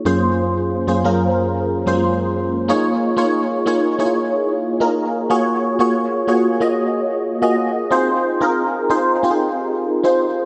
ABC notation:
X:1
M:4/4
L:1/16
Q:1/4=92
K:Db
V:1 name="FM electric piano"
[G,,B,DFAc]4 z [G,,B,DFAc] [G,,B,DFAB]4 z [G,,A,B,DFAc]4 z | [B,EFAd]2 z [B,EFAd]2 z [B,EFAd] z [B,E_F=FAd]4 z [B,EFAB]2 z | [B,FGAd]2 z [B,FGAd]2 z [B,FGAd] z [B,FGAe]4 z [B,FGAe]2 z | [CEFAc]2 z [CEFAB]2 z [CEFAc] z [CEF=GAc]4 z [CEFAc]2 z |]